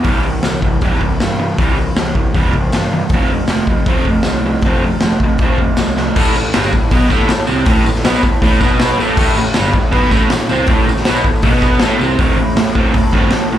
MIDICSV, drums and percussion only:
0, 0, Header, 1, 2, 480
1, 0, Start_track
1, 0, Key_signature, 0, "minor"
1, 0, Tempo, 381194
1, 64, Time_signature, 4, 2, 24, 8
1, 7265, Tempo, 378310
1, 17180, End_track
2, 0, Start_track
2, 0, Title_t, "Drums"
2, 51, Note_on_c, 9, 46, 64
2, 60, Note_on_c, 9, 36, 109
2, 177, Note_off_c, 9, 46, 0
2, 185, Note_off_c, 9, 36, 0
2, 535, Note_on_c, 9, 46, 58
2, 540, Note_on_c, 9, 38, 99
2, 570, Note_on_c, 9, 54, 87
2, 660, Note_off_c, 9, 46, 0
2, 665, Note_off_c, 9, 38, 0
2, 696, Note_off_c, 9, 54, 0
2, 785, Note_on_c, 9, 36, 88
2, 911, Note_off_c, 9, 36, 0
2, 1021, Note_on_c, 9, 46, 53
2, 1031, Note_on_c, 9, 36, 106
2, 1147, Note_off_c, 9, 46, 0
2, 1157, Note_off_c, 9, 36, 0
2, 1270, Note_on_c, 9, 36, 67
2, 1396, Note_off_c, 9, 36, 0
2, 1511, Note_on_c, 9, 46, 50
2, 1516, Note_on_c, 9, 38, 101
2, 1530, Note_on_c, 9, 54, 93
2, 1636, Note_off_c, 9, 46, 0
2, 1641, Note_off_c, 9, 38, 0
2, 1656, Note_off_c, 9, 54, 0
2, 1995, Note_on_c, 9, 36, 115
2, 1997, Note_on_c, 9, 46, 56
2, 2121, Note_off_c, 9, 36, 0
2, 2123, Note_off_c, 9, 46, 0
2, 2470, Note_on_c, 9, 46, 52
2, 2475, Note_on_c, 9, 38, 106
2, 2484, Note_on_c, 9, 54, 79
2, 2596, Note_off_c, 9, 46, 0
2, 2601, Note_off_c, 9, 38, 0
2, 2610, Note_off_c, 9, 54, 0
2, 2709, Note_on_c, 9, 36, 89
2, 2835, Note_off_c, 9, 36, 0
2, 2953, Note_on_c, 9, 36, 111
2, 2961, Note_on_c, 9, 46, 56
2, 3079, Note_off_c, 9, 36, 0
2, 3087, Note_off_c, 9, 46, 0
2, 3192, Note_on_c, 9, 36, 74
2, 3318, Note_off_c, 9, 36, 0
2, 3429, Note_on_c, 9, 54, 84
2, 3435, Note_on_c, 9, 46, 52
2, 3440, Note_on_c, 9, 38, 106
2, 3555, Note_off_c, 9, 54, 0
2, 3561, Note_off_c, 9, 46, 0
2, 3566, Note_off_c, 9, 38, 0
2, 3893, Note_on_c, 9, 46, 62
2, 3904, Note_on_c, 9, 36, 121
2, 4019, Note_off_c, 9, 46, 0
2, 4030, Note_off_c, 9, 36, 0
2, 4374, Note_on_c, 9, 46, 59
2, 4379, Note_on_c, 9, 38, 99
2, 4386, Note_on_c, 9, 54, 77
2, 4500, Note_off_c, 9, 46, 0
2, 4505, Note_off_c, 9, 38, 0
2, 4512, Note_off_c, 9, 54, 0
2, 4624, Note_on_c, 9, 36, 82
2, 4750, Note_off_c, 9, 36, 0
2, 4859, Note_on_c, 9, 46, 57
2, 4864, Note_on_c, 9, 36, 115
2, 4985, Note_off_c, 9, 46, 0
2, 4990, Note_off_c, 9, 36, 0
2, 5101, Note_on_c, 9, 36, 74
2, 5227, Note_off_c, 9, 36, 0
2, 5321, Note_on_c, 9, 46, 54
2, 5326, Note_on_c, 9, 38, 105
2, 5353, Note_on_c, 9, 54, 87
2, 5447, Note_off_c, 9, 46, 0
2, 5452, Note_off_c, 9, 38, 0
2, 5479, Note_off_c, 9, 54, 0
2, 5810, Note_on_c, 9, 46, 56
2, 5824, Note_on_c, 9, 36, 114
2, 5936, Note_off_c, 9, 46, 0
2, 5950, Note_off_c, 9, 36, 0
2, 6299, Note_on_c, 9, 46, 53
2, 6304, Note_on_c, 9, 38, 110
2, 6322, Note_on_c, 9, 54, 76
2, 6425, Note_off_c, 9, 46, 0
2, 6430, Note_off_c, 9, 38, 0
2, 6447, Note_off_c, 9, 54, 0
2, 6548, Note_on_c, 9, 36, 88
2, 6674, Note_off_c, 9, 36, 0
2, 6776, Note_on_c, 9, 46, 54
2, 6788, Note_on_c, 9, 36, 118
2, 6901, Note_off_c, 9, 46, 0
2, 6914, Note_off_c, 9, 36, 0
2, 7030, Note_on_c, 9, 36, 74
2, 7156, Note_off_c, 9, 36, 0
2, 7259, Note_on_c, 9, 46, 54
2, 7264, Note_on_c, 9, 38, 106
2, 7271, Note_on_c, 9, 54, 87
2, 7386, Note_off_c, 9, 46, 0
2, 7391, Note_off_c, 9, 38, 0
2, 7398, Note_off_c, 9, 54, 0
2, 7516, Note_on_c, 9, 38, 60
2, 7643, Note_off_c, 9, 38, 0
2, 7761, Note_on_c, 9, 49, 127
2, 7762, Note_on_c, 9, 36, 116
2, 7768, Note_on_c, 9, 54, 27
2, 7887, Note_off_c, 9, 49, 0
2, 7889, Note_off_c, 9, 36, 0
2, 7891, Note_off_c, 9, 54, 0
2, 7891, Note_on_c, 9, 54, 29
2, 8009, Note_off_c, 9, 54, 0
2, 8009, Note_on_c, 9, 54, 74
2, 8136, Note_off_c, 9, 54, 0
2, 8148, Note_on_c, 9, 54, 30
2, 8236, Note_on_c, 9, 46, 66
2, 8241, Note_on_c, 9, 38, 115
2, 8254, Note_off_c, 9, 54, 0
2, 8254, Note_on_c, 9, 54, 89
2, 8363, Note_off_c, 9, 46, 0
2, 8368, Note_off_c, 9, 38, 0
2, 8370, Note_off_c, 9, 54, 0
2, 8370, Note_on_c, 9, 54, 76
2, 8481, Note_on_c, 9, 36, 93
2, 8497, Note_off_c, 9, 54, 0
2, 8501, Note_on_c, 9, 54, 27
2, 8608, Note_off_c, 9, 36, 0
2, 8628, Note_off_c, 9, 54, 0
2, 8710, Note_on_c, 9, 46, 68
2, 8717, Note_on_c, 9, 36, 92
2, 8726, Note_on_c, 9, 54, 31
2, 8837, Note_off_c, 9, 46, 0
2, 8844, Note_off_c, 9, 36, 0
2, 8845, Note_off_c, 9, 54, 0
2, 8845, Note_on_c, 9, 54, 28
2, 8958, Note_on_c, 9, 36, 81
2, 8965, Note_on_c, 9, 38, 31
2, 8968, Note_off_c, 9, 54, 0
2, 8968, Note_on_c, 9, 54, 76
2, 9085, Note_off_c, 9, 36, 0
2, 9092, Note_off_c, 9, 38, 0
2, 9095, Note_off_c, 9, 54, 0
2, 9187, Note_on_c, 9, 46, 62
2, 9193, Note_on_c, 9, 38, 115
2, 9204, Note_on_c, 9, 54, 109
2, 9314, Note_off_c, 9, 46, 0
2, 9319, Note_off_c, 9, 38, 0
2, 9331, Note_off_c, 9, 54, 0
2, 9422, Note_on_c, 9, 54, 82
2, 9549, Note_off_c, 9, 54, 0
2, 9659, Note_on_c, 9, 46, 68
2, 9668, Note_on_c, 9, 54, 33
2, 9669, Note_on_c, 9, 36, 125
2, 9786, Note_off_c, 9, 46, 0
2, 9787, Note_off_c, 9, 54, 0
2, 9787, Note_on_c, 9, 54, 28
2, 9796, Note_off_c, 9, 36, 0
2, 9914, Note_off_c, 9, 54, 0
2, 9920, Note_on_c, 9, 54, 84
2, 10035, Note_off_c, 9, 54, 0
2, 10035, Note_on_c, 9, 54, 33
2, 10037, Note_on_c, 9, 38, 36
2, 10151, Note_on_c, 9, 46, 65
2, 10156, Note_off_c, 9, 38, 0
2, 10156, Note_on_c, 9, 38, 119
2, 10162, Note_off_c, 9, 54, 0
2, 10162, Note_on_c, 9, 54, 100
2, 10278, Note_off_c, 9, 46, 0
2, 10283, Note_off_c, 9, 38, 0
2, 10288, Note_off_c, 9, 54, 0
2, 10291, Note_on_c, 9, 54, 82
2, 10389, Note_on_c, 9, 36, 93
2, 10413, Note_off_c, 9, 54, 0
2, 10413, Note_on_c, 9, 54, 31
2, 10516, Note_off_c, 9, 36, 0
2, 10540, Note_off_c, 9, 54, 0
2, 10627, Note_on_c, 9, 36, 95
2, 10640, Note_on_c, 9, 46, 66
2, 10652, Note_on_c, 9, 54, 33
2, 10754, Note_off_c, 9, 36, 0
2, 10767, Note_off_c, 9, 46, 0
2, 10776, Note_off_c, 9, 54, 0
2, 10776, Note_on_c, 9, 54, 31
2, 10866, Note_on_c, 9, 36, 89
2, 10870, Note_off_c, 9, 54, 0
2, 10870, Note_on_c, 9, 54, 77
2, 10883, Note_on_c, 9, 38, 31
2, 10993, Note_off_c, 9, 36, 0
2, 10997, Note_off_c, 9, 54, 0
2, 11009, Note_off_c, 9, 38, 0
2, 11101, Note_on_c, 9, 46, 69
2, 11106, Note_on_c, 9, 38, 113
2, 11128, Note_on_c, 9, 54, 116
2, 11228, Note_off_c, 9, 46, 0
2, 11233, Note_off_c, 9, 38, 0
2, 11255, Note_off_c, 9, 54, 0
2, 11369, Note_on_c, 9, 54, 86
2, 11496, Note_off_c, 9, 54, 0
2, 11583, Note_on_c, 9, 36, 123
2, 11586, Note_on_c, 9, 49, 120
2, 11613, Note_on_c, 9, 54, 34
2, 11710, Note_off_c, 9, 36, 0
2, 11713, Note_off_c, 9, 49, 0
2, 11728, Note_off_c, 9, 54, 0
2, 11728, Note_on_c, 9, 54, 31
2, 11829, Note_off_c, 9, 54, 0
2, 11829, Note_on_c, 9, 54, 86
2, 11956, Note_off_c, 9, 54, 0
2, 11959, Note_on_c, 9, 54, 34
2, 12046, Note_on_c, 9, 46, 67
2, 12051, Note_on_c, 9, 38, 115
2, 12061, Note_off_c, 9, 54, 0
2, 12061, Note_on_c, 9, 54, 93
2, 12173, Note_off_c, 9, 46, 0
2, 12177, Note_off_c, 9, 54, 0
2, 12177, Note_on_c, 9, 54, 90
2, 12178, Note_off_c, 9, 38, 0
2, 12296, Note_on_c, 9, 36, 91
2, 12303, Note_off_c, 9, 54, 0
2, 12306, Note_on_c, 9, 54, 31
2, 12423, Note_off_c, 9, 36, 0
2, 12433, Note_off_c, 9, 54, 0
2, 12534, Note_on_c, 9, 46, 70
2, 12540, Note_on_c, 9, 36, 87
2, 12554, Note_on_c, 9, 54, 32
2, 12660, Note_off_c, 9, 46, 0
2, 12667, Note_off_c, 9, 36, 0
2, 12677, Note_off_c, 9, 54, 0
2, 12677, Note_on_c, 9, 54, 28
2, 12769, Note_on_c, 9, 38, 32
2, 12777, Note_on_c, 9, 36, 84
2, 12784, Note_off_c, 9, 54, 0
2, 12784, Note_on_c, 9, 54, 82
2, 12896, Note_off_c, 9, 38, 0
2, 12904, Note_off_c, 9, 36, 0
2, 12911, Note_off_c, 9, 54, 0
2, 13010, Note_on_c, 9, 46, 68
2, 13015, Note_on_c, 9, 38, 112
2, 13042, Note_on_c, 9, 54, 106
2, 13137, Note_off_c, 9, 46, 0
2, 13142, Note_off_c, 9, 38, 0
2, 13169, Note_off_c, 9, 54, 0
2, 13255, Note_on_c, 9, 54, 75
2, 13382, Note_off_c, 9, 54, 0
2, 13477, Note_on_c, 9, 46, 67
2, 13493, Note_on_c, 9, 36, 123
2, 13517, Note_on_c, 9, 54, 30
2, 13604, Note_off_c, 9, 46, 0
2, 13620, Note_off_c, 9, 36, 0
2, 13644, Note_off_c, 9, 54, 0
2, 13645, Note_on_c, 9, 54, 30
2, 13760, Note_off_c, 9, 54, 0
2, 13760, Note_on_c, 9, 54, 75
2, 13856, Note_on_c, 9, 38, 35
2, 13887, Note_off_c, 9, 54, 0
2, 13887, Note_on_c, 9, 54, 30
2, 13963, Note_on_c, 9, 46, 62
2, 13969, Note_off_c, 9, 38, 0
2, 13969, Note_on_c, 9, 38, 114
2, 13992, Note_off_c, 9, 54, 0
2, 13992, Note_on_c, 9, 54, 91
2, 14090, Note_off_c, 9, 46, 0
2, 14095, Note_off_c, 9, 38, 0
2, 14107, Note_off_c, 9, 54, 0
2, 14107, Note_on_c, 9, 54, 73
2, 14211, Note_on_c, 9, 36, 89
2, 14233, Note_off_c, 9, 54, 0
2, 14233, Note_on_c, 9, 54, 29
2, 14338, Note_off_c, 9, 36, 0
2, 14356, Note_off_c, 9, 54, 0
2, 14356, Note_on_c, 9, 54, 28
2, 14437, Note_on_c, 9, 46, 63
2, 14449, Note_on_c, 9, 36, 89
2, 14466, Note_off_c, 9, 54, 0
2, 14466, Note_on_c, 9, 54, 30
2, 14564, Note_off_c, 9, 46, 0
2, 14576, Note_off_c, 9, 36, 0
2, 14592, Note_off_c, 9, 54, 0
2, 14592, Note_on_c, 9, 54, 26
2, 14689, Note_on_c, 9, 36, 88
2, 14692, Note_on_c, 9, 38, 32
2, 14701, Note_off_c, 9, 54, 0
2, 14701, Note_on_c, 9, 54, 70
2, 14816, Note_off_c, 9, 36, 0
2, 14819, Note_off_c, 9, 38, 0
2, 14828, Note_off_c, 9, 54, 0
2, 14841, Note_on_c, 9, 54, 28
2, 14906, Note_on_c, 9, 46, 62
2, 14912, Note_on_c, 9, 38, 113
2, 14949, Note_off_c, 9, 54, 0
2, 14949, Note_on_c, 9, 54, 93
2, 15033, Note_off_c, 9, 46, 0
2, 15038, Note_off_c, 9, 38, 0
2, 15076, Note_off_c, 9, 54, 0
2, 15184, Note_on_c, 9, 54, 70
2, 15310, Note_off_c, 9, 54, 0
2, 15320, Note_on_c, 9, 54, 28
2, 15406, Note_on_c, 9, 46, 67
2, 15410, Note_on_c, 9, 36, 121
2, 15447, Note_off_c, 9, 54, 0
2, 15533, Note_off_c, 9, 46, 0
2, 15537, Note_off_c, 9, 36, 0
2, 15887, Note_on_c, 9, 46, 68
2, 15892, Note_on_c, 9, 38, 110
2, 16014, Note_off_c, 9, 46, 0
2, 16019, Note_off_c, 9, 38, 0
2, 16126, Note_on_c, 9, 36, 88
2, 16253, Note_off_c, 9, 36, 0
2, 16360, Note_on_c, 9, 46, 64
2, 16367, Note_on_c, 9, 36, 91
2, 16487, Note_off_c, 9, 46, 0
2, 16494, Note_off_c, 9, 36, 0
2, 16596, Note_on_c, 9, 38, 33
2, 16605, Note_on_c, 9, 36, 83
2, 16723, Note_off_c, 9, 38, 0
2, 16731, Note_off_c, 9, 36, 0
2, 16824, Note_on_c, 9, 46, 64
2, 16829, Note_on_c, 9, 38, 110
2, 16950, Note_off_c, 9, 46, 0
2, 16956, Note_off_c, 9, 38, 0
2, 17180, End_track
0, 0, End_of_file